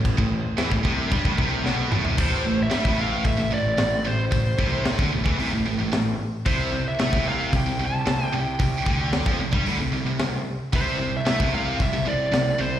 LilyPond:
<<
  \new Staff \with { instrumentName = "Lead electric guitar" } { \time 4/4 \key a \minor \tempo 4 = 112 r1 | c''8. e''8. f''8 e''8 d''4 c''8~ | c''4 r2. | c''8. e''8. f''8 g''8 a''4 g''8~ |
g''4 r2. | c''8. e''8. f''8 e''8 d''4 c''8 | }
  \new Staff \with { instrumentName = "Distorted electric guitar" } { \clef bass \time 4/4 \key a \minor a,16 a,8 r16 e16 a,16 c8 g16 a,16 c8 b,8 a,16 c16 | a,8 a,8 g16 a,8. a,16 a,16 a,8 a,8 a,8 | a,8 c8. d16 a,16 e16 c16 a,16 a,16 a,16 a,8 r8 | c8 c8 a16 c8. c16 c16 c8 c8 c8 |
c8 d8. f16 c16 g16 d16 c16 c16 c16 c8 r8 | c8 c8 a16 c8. c16 c16 c8 c8 c8 | }
  \new Staff \with { instrumentName = "Distorted electric guitar" } { \clef bass \time 4/4 \key a \minor a,16 a,8 r16 e16 a,16 c8 g16 a,16 c8 b,8 a,16 c16 | a,8 a,8 g16 a,8. a,16 a,16 a,8 a,8 a,8 | a,8 c8. d16 a,16 e16 c16 a,16 a,16 a,16 a,8 r8 | c8 c8 a16 c8. c16 c16 c8 c8 c8 |
c8 d8. f16 c16 g16 d16 c16 c16 c16 c8 r8 | c8 c8 a16 c8. c16 c16 c8 c8 c8 | }
  \new Staff \with { instrumentName = "Picked electric bass" } { \clef bass \time 4/4 \key a \minor a,,16 a,,8 r16 e,16 a,,16 c,8 g,16 a,,16 c,8 b,,8 a,,16 c,16 | a,,8 a,,8 g,16 a,,8. a,,16 a,,16 a,,8 a,,8 a,,8 | a,,8 c,8. d,16 a,,16 e,16 c,16 a,,16 a,,16 a,,16 a,,8 r8 | c,8 c,8 a,16 c,8. c,16 c,16 c,8 c,8 c,8 |
c,8 d,8. f,16 c,16 g,16 d,16 c,16 c,16 c,16 c,8 r8 | c,8 c,8 a,16 c,8. c,16 c,16 c,8 c,8 c,8 | }
  \new DrumStaff \with { instrumentName = "Drums" } \drummode { \time 4/4 <cymc bd>16 bd8. <cymc sn>16 bd16 bd8 <cymc bd>16 bd16 bd8 sn8 toml16 tomfh16 | <cymc bd>4 <hho sn>16 bd8. <hho bd>4 <hho sn>4 | <hho bd>8 bd8 <hho sn>16 bd8 bd16 hho4 <hho sn>4 | <hho bd>4 <hho sn>16 bd8. <hho bd>4 <hho sn>4 |
<hho bd>8 bd8 <hho sn>16 bd8 bd16 hho4 <hho sn>4 | <hho bd>4 <hho sn>16 bd8. <hho bd>4 <hho sn>4 | }
>>